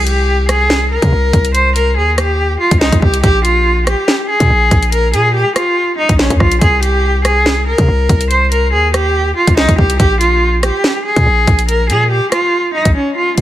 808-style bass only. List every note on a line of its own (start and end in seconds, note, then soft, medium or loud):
0.00 0.98 C2 loud
1.02 1.12 C3 loud
1.12 1.33 C2 loud
1.33 1.98 C2 loud
1.97 2.57 D#2 loud
2.71 2.92 C2 loud
2.92 3.02 C2 loud
3.02 3.23 C2 loud
3.24 3.95 A#1 loud
4.40 4.50 A#2 loud
4.50 4.71 A#1 loud
4.71 5.15 A#1 loud
5.14 5.44 A#2 loud
6.09 6.30 A#1 loud
6.30 6.40 F2 loud
6.40 6.61 A#1 loud
6.61 7.74 C2 loud
7.78 7.88 C3 loud
7.88 8.09 C2 loud
8.09 8.74 C2 loud
8.73 9.33 D#2 loud
9.47 9.68 C2 loud
9.69 9.78 C2 loud
9.78 9.99 C2 loud
10.00 10.71 A#1 loud
11.16 11.26 A#2 loud
11.26 11.47 A#1 loud
11.47 11.91 A#1 loud
11.90 12.20 A#2 loud
12.85 12.95 A#1 loud
13.38 13.41 C2 loud